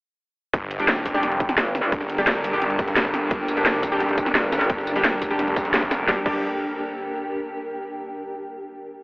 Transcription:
0.53 detuned saw bass G1, synth drone G3 D4 A4 A#4, ambient pad D4, kick, closed hi-hat
0.71 closed hi-hat
0.80 synth stab G3 D4 G4, closed hi-hat
0.88 snare, closed hi-hat
1.00 ambient pad G4
1.06 detuned saw bass F1, kick, snare, closed hi-hat, open hi-hat
1.14 synth stab G3 D4 G4
1.23 ambient pad G5, snare, closed hi-hat
1.32 closed hi-hat
1.40 kick, closed hi-hat
1.47 ambient pad A#3, snare, closed hi-hat
1.58 wobble bass G1, snare, closed hi-hat
1.75 snare, closed hi-hat, open hi-hat
1.84 closed hi-hat
1.92 detuned saw bass G1, kick, closed hi-hat
2.01 snare
2.10 closed hi-hat
2.18 synth stab G3 D4 G4, snare, closed hi-hat
2.27 snare, closed hi-hat
2.44 detuned saw bass G1, closed hi-hat, open hi-hat
2.53 synth stab G3 D4 G4, closed hi-hat
2.62 snare, closed hi-hat
2.70 closed hi-hat
2.79 detuned saw bass G1, kick, snare, closed hi-hat
2.88 snare, closed hi-hat
2.96 snare, closed hi-hat
3.05 kick
3.14 snare, closed hi-hat, open hi-hat
3.31 detuned saw bass G1, kick, closed hi-hat
3.48 closed hi-hat, tambourine
3.57 synth stab G3 D4 G4, closed hi-hat
3.66 snare, closed hi-hat, tambourine
3.83 detuned saw bass F1, kick, snare, closed hi-hat, open hi-hat, tambourine
3.92 synth stab G3 D4 G4
4.00 snare, closed hi-hat
4.09 closed hi-hat
4.18 kick, closed hi-hat, tambourine
4.26 snare, closed hi-hat
4.35 wobble bass G1, snare, closed hi-hat
4.52 snare, closed hi-hat, open hi-hat, tambourine
4.61 snare, closed hi-hat
4.70 detuned saw bass G1, kick, closed hi-hat
4.78 snare
4.87 closed hi-hat, tambourine
4.96 synth stab G3 D4 G4, snare, closed hi-hat
5.04 snare, closed hi-hat, tambourine
5.22 detuned saw bass F1, kick, closed hi-hat, open hi-hat, tambourine
5.30 synth stab G3 D4 G4, closed hi-hat
5.39 snare, closed hi-hat
5.48 closed hi-hat
5.56 kick, snare, closed hi-hat, tambourine
5.65 snare, closed hi-hat
5.74 snare, closed hi-hat
5.82 kick
5.91 snare, closed hi-hat, open hi-hat, tambourine
6.08 detuned saw bass G1, synth stab G3 D4 G4, ambient pad D4, kick, snare
6.26 detuned saw bass G1, synth stab G3 D4 G4, kick, crash

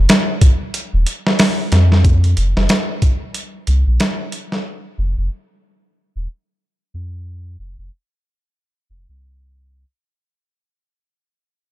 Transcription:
0.09 snare, closed hi-hat
0.41 kick, closed hi-hat
0.74 closed hi-hat
0.93 sub bass D#1
1.06 closed hi-hat
1.27 snare
1.39 snare, open hi-hat
1.72 sub bass F2, snare, closed hi-hat
1.92 snare
2.05 kick, closed hi-hat
2.24 closed hi-hat
2.37 sub bass F1, closed hi-hat
2.56 sub bass F1, snare
2.69 snare, closed hi-hat
3.02 kick, closed hi-hat
3.34 closed hi-hat
3.67 sub bass C2, closed hi-hat
3.87 sub bass A#1
4.00 snare, closed hi-hat
4.32 closed hi-hat
4.52 snare
4.98 sub bass F1
5.17 sub bass F1
6.16 sub bass D#1
6.94 sub bass F2
7.59 sub bass F1
7.78 sub bass F1
8.90 sub bass F1
9.09 sub bass C2

